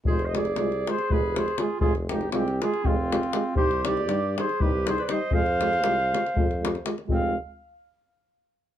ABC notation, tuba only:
X:1
M:7/8
L:1/8
Q:1/4=120
K:none
V:1 name="Tuba" clef=bass
F,,,2 C,,2 F,,,3 | F,,,2 C,,2 F,,,3 | C,,2 G,,2 C,,3 | F,,2 C,,2 F,,3 |
F,,, z6 |]